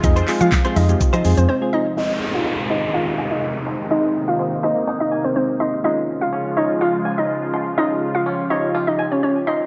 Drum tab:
HH |xxoxxxoxxxox----|----------------|----------------|----------------|
SH |xxxxxxxxxxxx----|----------------|----------------|----------------|
CP |--x-x-----------|----------------|----------------|----------------|
SD |----o-----------|----------------|----------------|----------------|
BD |o---o---o-------|----------------|----------------|----------------|

HH |----------------|
SH |----------------|
CP |----------------|
SD |----------------|
BD |----------------|